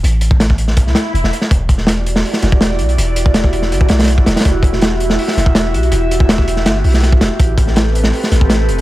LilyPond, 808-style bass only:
\new Staff \with { instrumentName = "808-style bass" } { \clef bass \time 4/4 \key e \minor \tempo 4 = 163 a,,2 c,8 r8 e,,16 e,,16 r8 | e,,2 r8 e,,4 b,,8 | e,,2 g,,8 b,,4 e,,16 r16 | e,,2 r8 e,,4 b,,8 |
e,,2 g,,8 b,,4 e,,16 r16 | a,,2 r8 a,,4 e,,8 | }